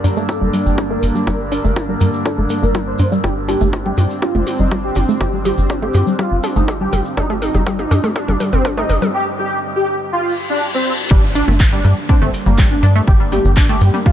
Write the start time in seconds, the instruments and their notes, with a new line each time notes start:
Already playing: synth drone G2 D3, analog synth pad G3 A#3 D4, analog synth lead A#4
0.04 analog synth bass G2, synth arpeggio sound D4, open hi-hat, cabasa
0.17 synth arpeggio sound A3, cabasa
0.29 analog synth lead A4, kick, mid tom, cabasa
0.41 analog synth bass G1, synth arpeggio sound G3
0.53 synth arpeggio sound G3, open hi-hat, cabasa
0.66 analog synth bass G1, analog synth lead G4, cabasa
0.78 synth arpeggio sound D4, kick, mid tom, cabasa
0.91 synth arpeggio sound A3, analog synth lead A#4
1.03 analog synth bass G1, open hi-hat, cabasa
1.15 synth arpeggio sound G3, cabasa
1.27 analog synth bass G1, synth arpeggio sound G3, analog synth lead A#4, kick, mid tom, cabasa
1.52 synth arpeggio sound D4, analog synth lead A#4, open hi-hat, cabasa
1.64 analog synth bass G1, synth arpeggio sound A3, cabasa
1.76 kick, mid tom, cabasa
1.89 synth arpeggio sound G3, analog synth lead A#4
2.01 analog synth bass G2, synth arpeggio sound G3, open hi-hat, cabasa
2.13 cabasa
2.26 synth arpeggio sound D4, analog synth lead A4, kick, mid tom, cabasa
2.38 analog synth bass G1, synth arpeggio sound A3
2.50 synth arpeggio sound A#3, open hi-hat, cabasa
2.63 analog synth bass G1, synth arpeggio sound A#3, analog synth lead A#4, cabasa
2.75 synth arpeggio sound G3, kick, mid tom, cabasa
2.87 analog synth lead C5
2.98 analog synth bass G2, synth arpeggio sound D4, open hi-hat, cabasa
3.12 synth arpeggio sound G3, cabasa
3.24 analog synth bass G1, synth arpeggio sound G3, analog synth pad C4, analog synth lead G4, kick, mid tom, cabasa
3.48 synth arpeggio sound D4, analog synth lead G4, open hi-hat, mid tom, cabasa
3.61 analog synth bass G1, synth arpeggio sound A3, cabasa
3.73 kick, mid tom, cabasa
3.86 synth arpeggio sound G3, analog synth lead G4, mid tom
3.98 analog synth bass G2, synth arpeggio sound G3, open hi-hat, mid tom, cabasa
4.10 cabasa
4.22 synth arpeggio sound D4, analog synth lead F4, kick, mid tom, cabasa
4.35 analog synth bass G1, synth arpeggio sound A3, mid tom
4.47 open hi-hat, mid tom, cabasa
4.58 analog synth bass G1, synth arpeggio sound G3, analog synth lead D#4, cabasa
4.71 synth arpeggio sound G3, kick, mid tom, cabasa
4.84 analog synth lead G4
4.95 analog synth bass G1, synth arpeggio sound D4, open hi-hat, mid tom, cabasa
5.09 synth arpeggio sound A3, cabasa
5.21 analog synth bass G1, analog synth lead G4, kick, mid tom, cabasa
5.33 synth arpeggio sound G3
5.45 synth arpeggio sound G3, analog synth lead G4, open hi-hat, mid tom, cabasa
5.58 analog synth bass G1, cabasa
5.70 synth arpeggio sound D4, kick, mid tom, cabasa
5.82 synth arpeggio sound A3, analog synth lead G4, mid tom
5.93 analog synth bass G2, open hi-hat, mid tom, cabasa
6.07 synth arpeggio sound G3, cabasa
6.19 synth arpeggio sound G3, analog synth lead F4, kick, mid tom, cabasa
6.32 analog synth bass G1
6.43 synth arpeggio sound D4, open hi-hat, mid tom, cabasa
6.56 analog synth bass G1, synth arpeggio sound A3, analog synth lead D#4, cabasa
6.68 kick, mid tom, cabasa
6.81 synth arpeggio sound G3, analog synth lead G4
6.93 analog synth bass G1, synth arpeggio sound G3, open hi-hat, mid tom, cabasa
7.05 cabasa
7.17 analog synth bass G1, synth arpeggio sound D4, analog synth lead D#4, kick, mid tom, cabasa
7.30 synth arpeggio sound A3, mid tom
7.42 analog synth lead D#4, open hi-hat, mid tom, cabasa
7.54 analog synth bass G1, synth arpeggio sound G3, mid tom, cabasa
7.67 synth arpeggio sound G3, kick, mid tom, cabasa
7.79 analog synth lead D#4, mid tom
7.91 analog synth bass G2, synth arpeggio sound D4, open hi-hat, mid tom, cabasa
8.04 synth arpeggio sound A3, mid tom, cabasa
8.16 analog synth lead D4, kick, mid tom, cabasa
8.28 analog synth bass G1, synth arpeggio sound G3, mid tom
8.40 synth arpeggio sound G3, open hi-hat, mid tom, cabasa
8.52 analog synth bass G1, analog synth lead C4, mid tom, cabasa
8.65 synth arpeggio sound D4, kick, mid tom, cabasa
8.77 synth arpeggio sound A3, analog synth lead D#4, mid tom
8.89 analog synth bass G1, open hi-hat, mid tom, cabasa
9.02 synth arpeggio sound G3, mid tom, cabasa
9.14 analog synth lead G4
9.39 analog synth lead G4
9.76 analog synth lead G4
10.12 analog synth lead F4, reverse cymbal
10.50 analog synth lead D4
10.74 analog synth lead C4
11.10 analog synth bass G1, synth drone G2 D3, synth arpeggio sound G3, analog synth pad G3 A#3 D4, analog synth lead D4, kick, downlifter, cabasa
11.35 synth arpeggio sound D4, analog synth lead D4, open hi-hat, cabasa
11.48 analog synth bass G1, synth arpeggio sound A3, mid tom, cabasa
11.60 kick, clap, cabasa
11.73 synth arpeggio sound G3, analog synth lead D4
11.84 analog synth bass G2, synth arpeggio sound G3, open hi-hat, cabasa
11.97 cabasa
12.09 analog synth lead C4, synth arpeggio sound D4, kick, mid tom, cabasa
12.22 analog synth bass G1, synth arpeggio sound A3
12.34 open hi-hat, cabasa
12.46 analog synth bass G1, synth arpeggio sound G3, analog synth lead A#3, cabasa
12.58 synth arpeggio sound G3, kick, clap, cabasa
12.71 analog synth lead D4, mid tom
12.83 analog synth bass G2, synth arpeggio sound D4, open hi-hat, cabasa
12.95 synth arpeggio sound A3, cabasa
13.07 analog synth bass G1, analog synth lead G4, kick, cabasa
13.20 synth arpeggio sound G3
13.32 synth arpeggio sound G3, analog synth lead G4, mid tom, open hi-hat, cabasa
13.45 analog synth bass G1, cabasa
13.57 synth arpeggio sound D4, kick, clap, cabasa
13.69 synth arpeggio sound A3, analog synth lead G4
13.81 analog synth bass G2, open hi-hat, cabasa
13.94 synth arpeggio sound G3, mid tom, cabasa
14.06 synth arpeggio sound G3, analog synth lead F4, kick, cabasa